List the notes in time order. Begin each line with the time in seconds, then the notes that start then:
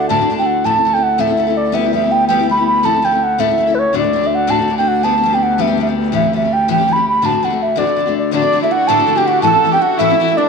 Already playing: D2 D4 E4 A4
0.09 D2 A2 D3 A3 D4 F#4 A5
0.19 D3 A3 D4 F#4
0.30 D3 A3 D4 F#4
0.38 D3 A3 D4 F#4 G5
0.46 F#5
0.64 A2 A3 C#4 E4 A4 A5
0.76 C#4 E4 A4
0.85 A3 C#4 E4 A4
0.94 C#4 E4 A4 G5
1.03 F#5
1.18 A2 A3 C#4 E4 A4 E5
1.27 C#4 E4 A4
1.37 A3 C#4 E4 A4
1.47 C#4 E4 A4
1.57 D5
1.72 G3 B3 E4 G4 E5
1.84 B3 E4 G4
1.93 G3 B3 E4 G4 E5
2.02 B3 E4 G4
2.12 G5
2.28 G3 B3 E4 G4 G5
2.39 B3 E4 G4
2.49 G3 B3 E4 G4 B5
2.57 B3 E4 G4
2.67 B5
2.83 A2 A3 C#4 E4 A4 A5
2.94 C#4 E4 A4
3.02 A3 C#4 E4 A4 G5
3.12 C#4 E4 A4
3.23 F#5
3.38 A2 A3 C#4 E4 A4 E5
3.48 C#4 E4 A4
3.58 A3 C#4 E4 A4
3.67 C#4 E4 A4
3.75 B4
3.79 C#5
3.93 D2 A2 D3 A3 D4 F#4
3.98 F#4 D5
4.03 D3 A3 D4
4.13 D3 A3 D4 F#4
4.21 D3 A3 D4 F#4
4.27 E5
4.35 F#5
4.47 D2 A2 D3 A3 D4 F#4 A5
4.59 D3 A3 D4 F#4
4.68 D3 A3 D4 F#4
4.78 D3 A3 D4 F#4 G5
4.88 F#5
5.03 G3 B3 D4 G4 A5
5.14 B3 D4 G4
5.24 G3 B3 D4 G4
5.33 B3 D4 G4 G5
5.43 F#5
5.58 G3 B3 D4 G4 E5
5.67 B3 D4 G4
5.78 G3 B3 D4 G4
5.82 E5
5.87 B3 D4 G4
6.12 A2 E3 G3 C#4 G4 E5
6.22 G3 C#4 G4
6.33 E3 G3 C#4 G4 E5
6.42 G3 C#4 G4
6.53 G5
6.68 A2 E3 G3 C#4 G4 G5
6.78 G3 C#4 G4
6.88 E3 G3 C#4 G4
6.92 G4 B5
6.98 G3 C#4
7.09 B5
7.22 D2 A2 D3 A3 D4 F#4 A5
7.32 D3 A3 D4 F#4
7.43 D3 A3 D4 F#4 F#5
7.50 D3 A3 D4 F#4
7.63 E5
7.76 D2 A2 D3 A3 D4 F#4 D5
7.86 D3 A3 D4 F#4
7.96 D3 A3 D4 F#4
8.06 D3 A3 D4 F#4
8.18 D5
8.31 D2 A2 D3 A3 D4 F#4 D5
8.42 D3 A3 D4 F#4
8.53 D3 A3 D4 F#4
8.61 D3 A3 D4 E4 F#4 E5
8.71 F#4 F#5
8.88 D2 A2 D3 A3 D4 F#4 A4 A5
8.97 D3 A3 D4 F#4
9.07 D3 A3 D4 F#4
9.16 D3 A3 D4 F#4 G4 G5
9.26 F#4 F#5
9.42 A2 E3 A3 C#4 E4 A4 A5
9.47 A4
9.53 A3 C#4 E4
9.64 E3 A3 C#4 E4
9.71 A3 C#4 E4 G4 G5
9.79 F#4 F#5
9.98 A2 E3 A3 C#4 E4 E5
10.10 A3 C#4 E4
10.19 E3 A3 C#4 E4
10.23 E4
10.28 A3 C#4 E4
10.37 D4 D5